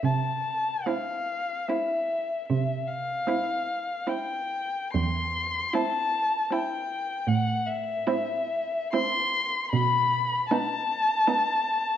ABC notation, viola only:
X:1
M:3/4
L:1/8
Q:1/4=76
K:Am
V:1 name="Viola"
z2 C2 C2 | z2 C2 C2 | z2 C2 C2 | [K:Ador] z2 C2 C2 |
z2 B,2 B,2 |]